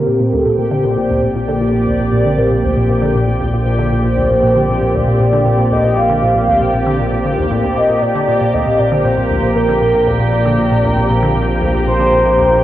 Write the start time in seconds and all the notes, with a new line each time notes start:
Already playing: A#1 A#2 A#3 C4 G4 A#4 G5
0.07 A#2
0.20 A#2
0.33 D2 A4
0.46 A#2 D5
0.58 A#2 A#4
0.71 D3
0.84 A#2 C5
0.97 A#2
1.10 D2
1.23 A#2
1.35 A#2
1.48 D3
1.61 A#2
1.74 A#2
1.87 D2 D5
2.00 A#2
2.12 A#2
2.25 D3
2.38 A#2 A#4
2.51 A#2
2.64 D2 C5
2.76 A#2
2.89 A#2 A#4
3.02 D3
3.15 A#2
3.28 A#2
3.41 D2
3.53 A#2
3.66 A#2
3.79 D3
3.92 A#2 C5
4.05 A#2
4.17 D2
4.30 A#2
4.43 A#2
4.56 D3
4.69 A#2
4.82 A#2
4.94 D2 D5
5.07 A#2
5.20 A#2
5.33 D3
5.46 A#2
5.59 A#2
5.71 D2 D#5
5.84 A#2
5.97 A#2 F5
6.10 D3
6.23 A#2
6.35 A#2
6.48 D2
6.61 A#2
6.74 A#2
6.86 D3
6.99 A#2
7.12 A#2
7.25 D3
7.38 D#2
7.51 A2
7.64 D2
7.76 A#2 D#5
7.89 A#2
8.02 A#1 A#2 D5 A#5
8.15 D3
8.28 A#2
8.41 A#2
8.53 D2 D#5
8.66 A#2 G5
8.79 A#2 D5
8.92 D3
9.05 A#2 C5
9.17 A#2
9.30 D2
9.43 A#2
9.56 A#2 A#4
9.69 D3
9.82 A#2
9.94 A#2
10.07 D2 D5
10.20 A#2
10.33 A#2
10.46 D3
10.59 A#2
10.71 A#2
10.84 D2
10.97 A#2
11.10 A#2
11.23 D3
11.35 A#2
11.48 A#2
11.61 D2
11.74 A#2
11.87 A#2 C5
12.00 D3
12.13 A#2
12.25 A#2
12.38 D2
12.51 A#2